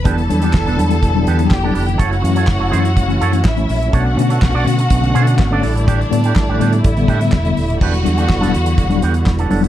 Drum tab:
CC |----------------|----------------|----------------|----------------|
HH |xxxx-xxxx-xx--ox|xxxx--xxxxxx-xox|x-xx--xxxxxx--ox|xxxx--xxxxxx-xox|
CP |----x-------x---|----x-------x---|----x-------x---|----x-------x---|
SD |----o-------o---|----o-------o---|----o-------o---|----o-------o---|
BD |o---o---o---o---|o---o---o---o---|o---o---o---o---|o---o---o-o-o---|

CC |x---------------|
HH |-xxx-xxxxxxx-xox|
CP |----x-------x---|
SD |----o-------o---|
BD |o---o---o---o---|